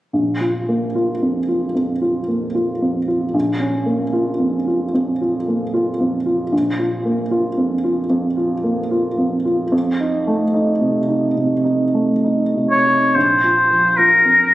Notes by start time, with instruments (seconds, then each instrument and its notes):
0.13 grand piano A#1
0.41 grand piano F4
0.68 grand piano A#3
0.95 grand piano F4
1.22 grand piano F2
1.48 grand piano F4
1.75 grand piano F2
2.02 grand piano F4
2.28 grand piano A#3
2.55 grand piano F4
2.82 grand piano F2
3.08 grand piano F4
3.34 grand piano A#1
3.60 grand piano C#4
3.86 grand piano A#3
4.13 grand piano F4
4.39 grand piano F2
4.67 grand piano F4
4.94 grand piano F2
5.21 grand piano F4
5.48 grand piano A#3
5.74 grand piano F4
6.00 grand piano F2
6.26 grand piano F4
6.52 grand piano A#1
6.79 grand piano F4
7.05 grand piano A#3
7.31 grand piano F4
7.58 grand piano F2
7.84 grand piano F4
8.10 grand piano F2
8.37 grand piano F4
8.64 grand piano A#3
8.91 grand piano F4
9.18 grand piano F2
9.45 grand piano F4
9.72 grand piano F2
10.00 grand piano D#4
10.27 grand piano A3
10.54 grand piano D#4
10.81 grand piano C3
11.08 grand piano D#4
11.36 grand piano C3
11.64 grand piano D#4
11.94 grand piano A3
12.24 grand piano D#4
12.55 grand piano C3
12.71 oboe C#5
12.87 grand piano D#4
13.15 grand piano A#1, oboe C5
13.44 grand piano F4
13.71 grand piano F3
13.97 grand piano F4, oboe A#4
14.25 grand piano F2